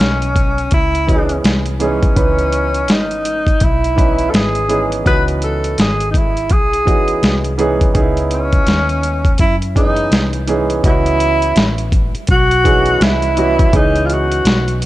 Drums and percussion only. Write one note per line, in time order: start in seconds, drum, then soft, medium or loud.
0.01 snare loud
0.22 closed hi-hat soft
0.36 kick medium
0.36 closed hi-hat medium
0.58 closed hi-hat soft
0.71 kick medium
0.71 closed hi-hat medium
0.95 closed hi-hat medium
1.09 kick medium
1.09 closed hi-hat medium
1.29 closed hi-hat soft
1.44 snare loud
1.44 closed hi-hat medium
1.66 closed hi-hat soft
1.80 closed hi-hat medium
2.03 kick medium
2.03 closed hi-hat medium
2.16 kick loud
2.16 closed hi-hat loud
2.39 closed hi-hat soft
2.52 closed hi-hat medium
2.74 closed hi-hat soft
2.88 snare loud
2.88 closed hi-hat medium
3.11 closed hi-hat soft
3.25 closed hi-hat medium
3.47 kick medium
3.47 closed hi-hat soft
3.60 kick medium
3.60 closed hi-hat medium
3.84 closed hi-hat medium
3.98 kick medium
3.98 closed hi-hat medium
4.19 closed hi-hat medium
4.34 snare loud
4.34 closed hi-hat medium
4.55 closed hi-hat medium
4.69 closed hi-hat medium
4.92 closed hi-hat medium
5.06 kick loud
5.06 closed hi-hat medium
5.28 closed hi-hat soft
5.42 closed hi-hat medium
5.64 closed hi-hat soft
5.78 snare loud
5.78 closed hi-hat medium
6.00 closed hi-hat medium
6.14 kick medium
6.14 closed hi-hat medium
6.37 closed hi-hat soft
6.50 kick medium
6.50 closed hi-hat medium
6.73 closed hi-hat medium
6.87 kick medium
6.87 closed hi-hat medium
7.08 closed hi-hat medium
7.23 snare loud
7.23 closed hi-hat medium
7.44 closed hi-hat medium
7.59 closed hi-hat medium
7.81 kick medium
7.81 closed hi-hat medium
7.95 kick loud
7.95 closed hi-hat medium
8.17 closed hi-hat soft
8.31 closed hi-hat medium
8.52 kick medium
8.52 closed hi-hat medium
8.67 snare loud
8.67 closed hi-hat medium
8.89 closed hi-hat soft
9.03 closed hi-hat medium
9.25 kick medium
9.25 closed hi-hat soft
9.38 kick medium
9.38 closed hi-hat medium
9.62 closed hi-hat medium
9.76 kick medium
9.76 closed hi-hat medium
9.96 closed hi-hat medium
10.12 snare loud
10.12 closed hi-hat medium
10.33 closed hi-hat medium
10.47 closed hi-hat medium
10.70 closed hi-hat medium
10.84 kick loud
10.84 closed hi-hat loud
11.06 closed hi-hat medium
11.20 closed hi-hat medium
11.42 closed hi-hat medium
11.56 snare loud
11.56 closed hi-hat medium
11.78 closed hi-hat medium
11.92 kick medium
11.92 closed hi-hat medium
12.15 closed hi-hat soft
12.27 kick medium
12.27 closed hi-hat medium
12.51 closed hi-hat medium
12.65 kick medium
12.65 closed hi-hat medium
12.86 closed hi-hat medium
13.01 snare loud
13.01 closed hi-hat loud
13.22 closed hi-hat medium
13.37 closed hi-hat medium
13.59 kick loud
13.59 closed hi-hat medium
13.73 kick loud
13.73 closed hi-hat loud
13.96 closed hi-hat soft
14.10 closed hi-hat medium
14.32 closed hi-hat medium
14.45 snare loud
14.45 closed hi-hat medium
14.68 closed hi-hat medium
14.82 closed hi-hat medium